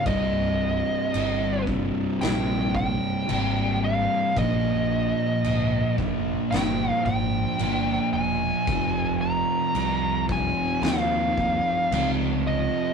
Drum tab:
CC |x-x-x-x-|x-x-x-x-|x-x-x-x-|
SD |----o---|----o---|----o---|
BD |o--o-o--|o--o-o--|o--o-o--|